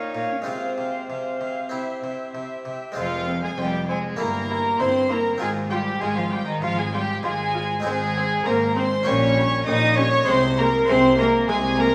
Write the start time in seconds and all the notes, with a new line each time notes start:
Already playing: A#2 C#4 D#4 F4 C#5 F5 G5
0.15 A#2 F5 G5
0.31 C#4
0.42 G#3 C4 F4 G#5
0.46 C3 C5 F5
0.78 C3 F5 G#5
1.09 C3 F5 G#5
1.41 C3 F5 G#5
1.69 C3 C4 E4 E5 G5
2.03 C3 E5 G5
2.34 C3 E5 G5
2.65 C3 E5 G5
2.92 G#3 C4 F4
2.96 F1 F2 F3 C4 F4 F5
3.28 C4
3.41 G#3 G#4 G#5
3.57 F1 F2 G3 C4 G4 G5
3.87 G#3 C4 G#4 G#5
4.16 G1 G2 A#3 E4 A#4 A#5
4.50 E4
4.79 G1 G2 C4 E4 C5 C6
5.09 A#3 E4 A#4 A#5
5.38 G#1 G#2 G#3 C4 F4 G#4 G#5
5.70 G3 F4 G4 G5
6.01 G#1 G#2 G#3 F4 G#4 G#5
6.16 F3 F4 F5
6.31 G3 F4 G4 G5
6.46 D#3 D#4 D#5
6.62 G#1 G#2 F3 F4 F5
6.77 G#3 G#4 G#5
6.93 G3 F4 G4 G5
7.23 G#1 G#2 G#3 F4 G#4 G#5
7.55 F4
7.80 G#3 C4 D#4
7.84 G#1 G#2 G#3 C4 G#4 G#5
8.16 C4
8.45 G#1 G#2 A#3 C4 A#4 A#5
8.75 C4 C5 C6
9.03 A#1 A#2 G3 C#4 G4 C#5 C#6
9.38 G3
9.66 A#1 A#2 G3 D#4 D#5 D#6
9.97 G3 C#4 C#5 C#6
10.24 C2 G#3 C4 D#4 C5
10.28 C3 G#3 C6
10.57 G#3 A#3 A#4 A#5
10.88 C2 C3 G#3 C4 C5 C6
11.18 G#3 A#3 A#4 A#5
11.48 C2 C3 G#3 G#4 G#5
11.78 G#3 A#3 A#4 A#5